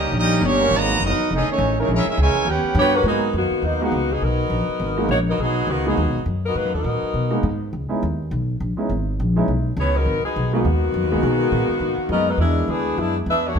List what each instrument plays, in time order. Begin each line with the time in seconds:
Already playing: upright bass C#2, trombone section G3 A#3 D#4, trumpet section C#4 G4 A#4 D#5
0.12 upright bass A#1
0.16 trombone section G3 A#3 D#4, trumpet section C#4 G4 A#4 D#5
0.41 upright bass G1, trombone section G3 A#3
0.45 trumpet section A#3 D#4 G4 C#5, trombone section C#4
0.59 trombone section G#3 B3 F#4 A#4
0.71 upright bass G#1, trombone section D#3 F#3 A#3
0.76 trumpet section F#4 B4 D#5 A#5
1.00 upright bass F#1, trombone section F#3 B3 D#4
1.07 trumpet section B3 F#4 A#4 D#5
1.18 muted upright bass stroke
1.30 upright bass F1, trombone section D#3 A3 D#4, trumpet section C#4 G#4 A4
1.35 trumpet section D#5
1.48 trombone section D#3 A3 C#4, trumpet section G#4, muted upright bass stroke
1.52 trumpet section A3 D#4 C#5
1.58 upright bass A1
1.78 trombone section D#3 G#3 A3 C#4 E4 A#4, trumpet section A3 D#4 G#4 C#5
1.88 upright bass A#1, trombone section G#3 C#4 E4
1.94 trumpet section C#4 G#4 A#4 E5
2.06 trombone section G#3 C#4 E4, trumpet section C#4 G#4 A#4 E5, muted upright bass stroke
2.17 upright bass C#2, trombone section C#3 E3 G#3, trumpet section E4 A#4 C#5 G#5
2.35 muted upright bass stroke
2.45 upright bass D#2, trombone section G4
2.49 trombone section B3 C#4, trumpet section C#4 B4 F#5 G5
2.64 muted upright bass stroke
2.75 upright bass G2
2.79 saxophone section B3 F#4 G4 C#5
2.93 saxophone section G3 C#4 F#4 B4, trombone section G#3 B3 F#4 A#4
3.04 upright bass G#2, saxophone section F#3 B3 D#4 G#4, grand piano G#3 A#3 B3 D#4 F#4
3.33 upright bass F#2, saxophone section A#3 B3
3.38 saxophone section D#3 F#4
3.51 muted upright bass stroke
3.62 upright bass D#2, saxophone section F#3 A#3 B3 D#4
3.80 saxophone section D#3 A#3 B3 F#4, grand piano G#3 A#3 B3 D#4 F#4
3.92 upright bass C#2
4.13 saxophone section F#3 B3 D#4 G#4
4.22 upright bass B1, saxophone section F#3 B3 D#4 A#4
4.50 upright bass A#1
4.69 muted upright bass stroke
4.80 upright bass G#1
4.97 grand piano G#3 A#3 B3 D#4 F#4
5.09 upright bass A#1, saxophone section A#3 D#4 F#4 C#5
5.29 saxophone section F#3 B3 D#4 A#4
5.38 upright bass B1, saxophone section F#3 B3 D#4 G#4
5.67 upright bass C#2, saxophone section D#3 A#3 B3 F#4
5.86 saxophone section F#3 B3 D#4 G#4, grand piano G#3 A#3 B3 D#4 F#4
5.97 upright bass D#2
6.07 upright bass B1
6.16 upright bass G#1
6.26 upright bass F#2
6.46 saxophone section F#3 B3 D#4 A#4
6.55 upright bass G#2, saxophone section F#3 A#3 D#4 B4
6.65 upright bass F#2
6.74 upright bass D#2, saxophone section F#3 B3 D#4 A#4
6.84 upright bass A#2
7.02 muted upright bass stroke
7.14 upright bass B2
7.30 grand piano G#3 A#3 B3 D#4 F#4
7.43 upright bass G#2
7.73 upright bass C#2
7.89 grand piano G#3 B3 C#4 D#4 E4, muted upright bass stroke
8.03 upright bass D#2
8.31 upright bass B1
8.60 upright bass A#1
8.77 grand piano G#3 B3 C#4 D#4 E4, muted upright bass stroke
8.89 upright bass G#1
9.20 upright bass A#1
9.36 grand piano G#3 B3 C#4 D#4 E4
9.48 upright bass B1
9.77 upright bass C#2, saxophone section B3 E4 G#4 C#5
9.96 saxophone section F#3 B3 D#4 A#4
10.05 upright bass G#1
10.23 saxophone section F#3 B3 D#4 G#4, muted upright bass stroke
10.36 upright bass B1
10.53 saxophone section D#3 A#3 B3 F#4, grand piano G#3 A#3 B3 D#4 F#4
10.65 upright bass D#2
10.94 upright bass F#2
11.03 upright bass D#2
11.11 upright bass B1, grand piano G#3 A#3 B3 D#4 F#4
11.22 upright bass B2, grand piano B2 G#3 D#4 F#4 A#4
11.52 upright bass A#2
11.69 muted upright bass stroke
11.80 upright bass G#2
11.98 muted upright bass stroke
12.09 upright bass F#2, grand piano G#3 A#3 B3 D#4 F#4, saxophone section B3 F#4 A#4 D#5
12.29 saxophone section F#3 A#3 D#4 B4
12.38 upright bass E2, grand piano G#3 B3 D4 E4 F#4, saxophone section G#3 D4 E4 A#4
12.68 upright bass D2, saxophone section E3 B3 D4 G#4
12.98 upright bass F#2, saxophone section G#3 B3 D4 E4
13.26 upright bass E2, saxophone section D4 G#4 B4 E5
13.47 saxophone section A#3 D4 F#4 C#5
13.55 upright bass D#2